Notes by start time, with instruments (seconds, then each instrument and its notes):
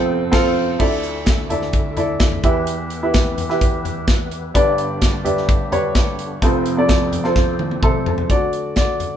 Already playing: upright piano F1 F2 C4 F4 A4 C5 F5 G5, tonewheel organ F2 F3 C4 A4 C5
0.32 upright piano C4 F4 A4 C5 F5, kick, snare, crash
0.79 upright piano D2 D3 E4 A4 D5 E5, tonewheel organ D2 D3 A3 E4 A4, kick, crash
1.03 closed hi-hat
1.26 kick, snare, closed hi-hat
1.50 upright piano E4 A4 D5 E5, closed hi-hat, floor tom
1.61 snare
1.73 kick, closed hi-hat
1.97 upright piano E4 A4 D5 E5, closed hi-hat, floor tom
2.20 kick, snare, closed hi-hat
2.32 floor tom
2.43 tonewheel organ E2 E3 B3 G4 B4, upright piano E2 E3 E4 G4 B4 E5, kick, closed hi-hat
2.67 closed hi-hat
2.90 closed hi-hat
3.03 upright piano E4 G4 B4 E5
3.14 kick, snare, closed hi-hat
3.38 closed hi-hat, floor tom
3.49 upright piano E4 G4 B4 E5, snare
3.61 kick, closed hi-hat
3.85 closed hi-hat, floor tom
4.08 kick, snare, closed hi-hat
4.31 closed hi-hat
4.54 upright piano G1 G2 D4 G4 B4 D5, tonewheel organ G2 D3 D4, kick, closed hi-hat
4.78 closed hi-hat
5.02 kick, snare, closed hi-hat
5.24 upright piano D4 G4 B4 E5, closed hi-hat, floor tom
5.37 snare
5.49 kick, closed hi-hat
5.72 upright piano D4 G4 B4 C#5, closed hi-hat, floor tom
5.95 kick, snare, closed hi-hat
6.19 closed hi-hat
6.42 upright piano F1 F2 C4 F4 A4 C5, tonewheel organ F2 F3 C4 A4 C5, kick, closed hi-hat
6.66 closed hi-hat
6.77 upright piano C4 F4 A4 D5
6.89 kick, snare, closed hi-hat
7.12 closed hi-hat, floor tom
7.24 upright piano C4 F4 A4 C5, snare
7.36 kick, snare
7.59 high tom
7.71 high tom
7.83 upright piano C4 A4 E5 C6, kick, mid tom
8.06 upright piano C5 A5, floor tom
8.18 floor tom
8.30 upright piano D3 F#3 A3 F#4 D5, kick, closed hi-hat
8.53 closed hi-hat
8.76 upright piano F#4 D5, kick, snare, closed hi-hat
9.00 closed hi-hat, floor tom